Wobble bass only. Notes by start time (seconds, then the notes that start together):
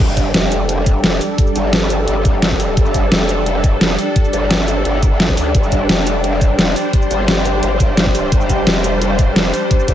0.00 G1
0.34 F1
1.56 G1
2.08 G1
2.25 G1
2.77 G1
3.12 F1
4.33 G1
4.85 G1
5.37 D2
5.55 G1
5.89 F1
7.11 G1
7.63 G1
7.80 G1
8.32 G1
8.67 F1
9.88 G1